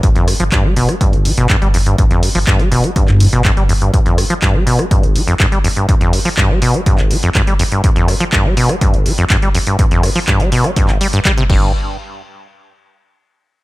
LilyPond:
<<
  \new Staff \with { instrumentName = "Acid bass" } { \clef bass \time 4/4 \key f \lydian \tempo 4 = 123 g,16 f,16 g,16 f16 g,16 g16 b,16 g16 g,16 g,,16 g16 b,16 g,16 g16 f,16 g,16 | r16 f,16 g,16 f16 g,16 g16 b,16 g16 g,16 g,,16 g16 b,16 g,16 g16 f,16 g,16 | g,16 f,16 g,16 f16 g,16 g16 b,16 g16 g,16 g,,16 g16 f,16 g,16 g16 f,16 g,16 | r16 f,16 g,16 f16 g,16 g16 b,16 g16 g,16 g,,16 g16 f,16 g,16 g16 f,16 g,16 |
r16 f,16 g,16 f16 g,16 g16 b,16 g16 g,16 g,,16 g16 f,16 g,16 g16 f,16 g,16 | r16 f,16 g,16 f16 g,16 g16 b,16 g16 g,16 g,,16 g16 g,16 g16 c16 g,8 | r1 | }
  \new Staff \with { instrumentName = "Sub bass" } { \clef bass \time 4/4 \key f \lydian g,,16 r8 g,,16 r8 f,,16 r8 g,,8 g,,16 r16 g,,8. | g,,16 r8 g,,16 r8 f,,16 r8 g,8 g,,8 g,,8. | r1 | r1 |
r1 | r2. r8 g,,8 | r1 | }
  \new DrumStaff \with { instrumentName = "Drums" } \drummode { \time 4/4 <hh bd>16 hh16 <hho ss>16 hh16 <hc hh bd>8 hho16 <hh ss>16 <hh bd>16 hh16 hho16 hh16 <hc hh bd>16 hh16 hho16 hh16 | <hh bd>16 hh16 hho16 hho16 <hc hh bd>16 hh16 hho16 hh16 <hh bd>16 <hc hh>16 hho16 hh16 <hc hh bd>16 hh16 hho16 hh16 | <hh bd>16 hh16 <hho ss>16 hh16 <hc hh bd>8 hho16 <hh ss>16 <hh bd>16 hh16 hho16 hh16 <hc hh bd>16 hh16 hho16 hh16 | <hh bd>16 hh16 hho16 hho16 <hc hh bd>8 hho16 hh16 <hh bd>16 <hc hh>16 hho16 hh16 <hc hh bd>16 hh16 hho16 hh16 |
<hh bd>16 hh16 <hho ss>16 hh16 <hc hh bd>8 hho16 <hh ss>16 <hh bd>16 hh16 hho16 hh16 <hc hh bd>16 hh16 hho16 hh16 | <hh bd>16 hh16 <hho ss>16 hho16 <hc hh bd>16 hh16 hho16 <hh ss>16 <hh bd>16 <hc hh>16 hho16 hh16 <hc hh bd>16 hh16 <cymc bd>8 | r4 r4 r4 r4 | }
>>